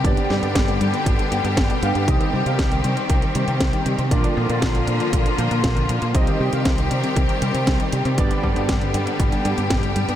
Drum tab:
HH |xx-xxxxxxxxxxxxx|xx-xxxxxxxxxxxxx|xx-xxxxxxxxxxxxx|xx-xxxxxxxxxxxxx|
SD |--o-o-------o---|----o-------o---|----o-------o---|----o-------o---|
BD |o---o---o---o---|o---o---o---o---|o---o---o---o---|o---o---o---o---|

HH |xx-xxxxxxxxxxxxx|
SD |----o-------o---|
BD |o-o-o---o---o---|